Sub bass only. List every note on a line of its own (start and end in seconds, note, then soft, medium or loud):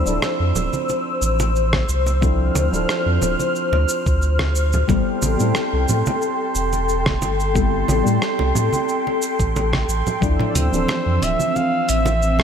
0.06 0.19 D1 medium
0.40 0.53 F2 medium
0.55 0.70 D1 medium
1.21 1.84 A1 medium
1.89 2.51 C2 medium
2.55 2.70 D2 medium
2.72 2.86 D1 medium
3.06 3.19 F2 medium
3.22 3.36 D1 medium
3.72 3.85 D2 loud
4.06 4.84 D2 medium
4.89 5.03 A1 loud
5.22 5.37 A1 medium
5.40 5.53 A2 medium
5.73 5.86 C2 medium
5.89 6.03 A2 medium
6.55 7.17 E1 loud
7.22 7.84 G1 medium
7.88 8.03 A1 medium
8.06 8.19 A2 medium
8.40 8.53 C2 medium
8.55 8.70 A2 medium
9.39 9.84 A1 medium
9.88 10.03 A1 loud
10.22 10.36 D2 medium
10.55 10.70 D2 medium
10.72 10.86 D1 medium
11.06 11.19 F2 medium
11.22 11.36 D1 medium
11.89 12.43 A1 loud